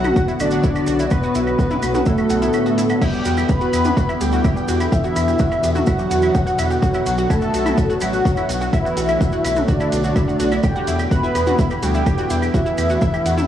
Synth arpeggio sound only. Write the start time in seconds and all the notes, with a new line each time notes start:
0.04 F#4 F#5
0.16 F#4 F#5
0.28 E4 E5
0.40 F#4 F#5
0.52 F#4 F#5
0.64 E4 E5
0.76 F#4 F#5
0.87 F#4 F#5
0.99 E4 E5
1.11 F#4 F#5
1.23 F#4 F#5
1.35 E4 E5
1.47 F#4 F#5
1.59 F#4 F#5
1.71 E4 E5
1.83 F#4 F#5
1.95 F#4 F#5
2.07 E4 E5
2.18 F#4 F#5
2.30 F#4 F#5
2.42 E4 E5
2.54 F#4 F#5
2.66 F#4 F#5
2.78 E4 E5
2.90 F#4 F#5
3.01 E4 E5
3.13 G4 G5
3.25 F#4 F#5
3.37 E4 E5
3.49 G4 G5
3.61 F#4 F#5
3.73 E4 E5
3.85 G4 G5
3.97 F#4 F#5
4.09 E4 E5
4.21 G4 G5
4.33 F#4 F#5
4.44 E4 E5
4.56 G4 G5
4.68 F#4 F#5
4.80 E4 E5
4.92 G4 G5
5.04 F#4 F#5
5.16 E4 E5
5.28 G4 G5
5.40 F#4 F#5
5.51 E4 E5
5.63 G4 G5
5.75 F#4 F#5
5.87 E4 E5
5.99 G4 G5
6.11 F#4 F#5
6.23 E4 E5
6.35 G4 G5
6.47 F#4 F#5
6.58 E4 E5
6.70 G4 G5
6.82 F#4 F#5
6.94 E4 E5
7.06 F#4 F#5
7.18 F#4 F#5
7.30 E4 E5
7.42 F#4 F#5
7.54 F#4 F#5
7.66 E4 E5
7.78 F#4 F#5
7.90 F#4 F#5
8.01 E4 E5
8.13 F#4 F#5
8.25 F#4 F#5
8.37 E4 E5
8.49 F#4 F#5
8.61 F#4 F#5
8.73 E4 E5
8.85 F#4 F#5
8.97 F#4 F#5
9.09 E4 E5
9.21 F#4 F#5
9.33 F#4 F#5
9.44 E4 E5
9.56 F#4 F#5
9.68 F#4 F#5
9.80 E4 E5
9.92 F#4 F#5
10.04 F#4 F#5
10.16 E4 E5
10.28 F#4 F#5
10.40 F#4 F#5
10.52 E4 E5
10.64 G4 G5
10.76 F#4 F#5
10.87 E4 E5
10.99 G4 G5
11.11 F#4 F#5
11.23 E4 E5
11.35 G4 G5
11.47 F#4 F#5
11.59 E4 E5
11.71 G4 G5
11.83 F#4 F#5
11.95 E4 E5
12.06 G4 G5
12.18 F#4 F#5
12.30 E4 E5
12.42 G4 G5
12.54 F#4 F#5
12.66 E4 E5
12.78 G4 G5
12.90 F#4 F#5
13.02 E4 E5
13.14 G4 G5
13.25 F#4 F#5
13.37 E4 E5